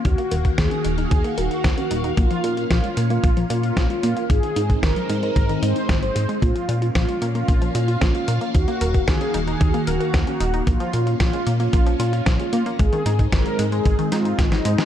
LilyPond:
<<
  \new Staff \with { instrumentName = "Analog polysynth" } { \time 4/4 \key bes \minor \tempo 4 = 113 ges'8. r16 aes'8. aes'8. ges'8. ges'8. | f'8. r16 f'8. f'8. f'8. f'8. | aes'8. r16 bes'8. bes'8. c''8. c''8. | f'8. r16 f'8. f'8. f'8. f'8. |
ges'8. r16 aes'8. aes'8. ges'8. ges'8. | f'8. r16 f'8. f'8. f'8. f'8. | aes'8. r16 bes'8. aes'8. f'8. ees'8. | }
  \new Staff \with { instrumentName = "String machine" } { \time 4/4 \key bes \minor << { <ees ges' f''>1 | des'1 | <c' ees'>1 | <des' f''>1 |
<ees ges'>1 | des'1 | <c' ees'>1 | } \\ { bes1~ | bes1 | aes1 | bes1~ |
bes1~ | bes1 | aes1 | } >> }
  \new Staff \with { instrumentName = "Synth arpeggio sound" } { \time 4/4 \key bes \minor ees'16 bes16 bes'16 bes'16 bes16 des'16 ees'16 ees'16 ees'16 bes16 bes'16 bes'16 bes16 des'16 ees'16 ees'16 | bes16 f16 f'16 f'16 f16 aes16 bes16 bes16 bes16 f16 f'16 f'16 f16 aes16 bes16 bes16 | aes16 ees16 ees'16 ees'16 ees16 ges16 aes16 aes16 aes16 ees16 ees'16 ees'16 ees16 ges16 aes16 aes16 | bes16 f16 f'16 f'16 f16 aes16 bes16 bes16 bes16 f16 f'16 f'16 f16 aes16 bes16 bes16 |
ees'16 bes16 bes'16 bes'16 bes16 des'16 ees'16 ees'16 ees'16 bes16 bes'16 bes'16 bes16 des'16 ees'16 ees'16 | bes16 f16 f'16 f'16 f16 aes16 bes16 bes16 bes16 f16 f'16 f'16 f16 aes16 bes16 bes16 | aes16 ees16 ees'16 ees'16 ees16 ges16 aes16 aes16 aes16 ees16 ees'16 ees'16 ees16 ges16 aes16 aes16 | }
  \new Staff \with { instrumentName = "Analog synth bass" } { \clef bass \time 4/4 \key bes \minor ees,8 ees,,8 ees,8 ees,,8 ees,8 ees,,8 ees,8 ees,,8 | bes,,8 bes,8 bes,,8 bes,8 bes,,8 bes,8 bes,,8 bes,8 | aes,,8 aes,8 aes,,8 aes,8 aes,,8 aes,8 aes,,8 aes,8 | bes,,8 bes,8 bes,,8 bes,8 bes,,8 bes,8 bes,,8 bes,8 |
ees,8 ees,,8 ees,8 ees,,8 ees,8 ees,,8 ees,8 ees,,8 | bes,,8 bes,8 bes,,8 bes,8 bes,,8 bes,8 bes,,8 bes,8 | aes,,8 aes,8 aes,,8 aes,8 aes,,8 aes,8 aes,,8 aes,8 | }
  \new DrumStaff \with { instrumentName = "Drums" } \drummode { \time 4/4 <hh bd>16 hh16 hh16 <hh bd>16 <hh bd sn>16 hh16 hh16 hh16 <hh bd>16 hh16 hh16 hh16 <hh bd sn>16 hh16 hh16 hh16 | <hh bd>16 hh16 hh16 hh16 <hh bd sn>16 hh16 hh16 hh16 <hh bd>16 hh16 hh16 hh16 <hh bd sn>16 hh16 hh16 hh16 | <hh bd>16 hh16 hh16 <hh bd>16 <hh bd sn>16 hh16 hh16 hh16 <hh bd>16 hh16 hh16 hh16 <hh bd sn>16 hh16 hh16 hh16 | <hh bd>16 hh16 hh16 hh16 <hh bd sn>16 hh16 hh16 hh16 <hh bd>16 hh16 hh16 hh16 <hh bd sn>16 hh16 hh16 hh16 |
<hh bd>16 hh16 hh16 <hh bd>16 <hh bd sn>16 hh16 hh16 hh16 <hh bd>16 hh16 hh16 hh16 <hh bd sn>16 hh16 hh16 hh16 | <hh bd>16 hh16 hh16 hh16 <hh bd sn>16 hh16 hh16 hh16 <hh bd>16 hh16 hh16 hh16 <hh bd sn>16 hh16 hh16 hh16 | <hh bd>16 hh16 hh16 <hh bd>16 <hh bd sn>16 hh16 hh16 hh16 <hh bd>16 hh16 <hh sn>16 hh16 <hh bd sn>16 <hh sn>16 hh16 <hh sn>16 | }
>>